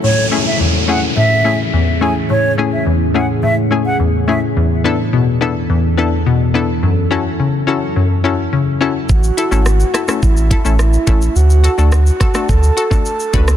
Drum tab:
HH |----------------|----------------|----------------|----------------|
SH |----------------|----------------|----------------|----------------|
SD |----------------|----------------|----------------|----------------|
BD |----------------|----------------|----------------|----------------|

HH |--x---x---x---x-|--x---x---x---x-|
SH |xxxxxxxxxxxxxxxx|xxxxxxxxxxxxxxxx|
SD |----r-rr----r---|----r-rr-------r|
BD |o-------o-o---o-|------o-o--o--o-|